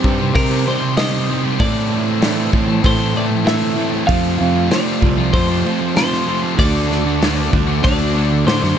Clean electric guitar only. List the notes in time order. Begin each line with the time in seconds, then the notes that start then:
Already playing: C5
0.36 A#4
0.67 C5
0.97 D#5
1.60 D5
2.86 C5
3.17 D5
3.47 E5
4.07 F5
4.71 D5
5.33 C5
5.97 C5
6.59 D5
7.84 D5
8.47 C5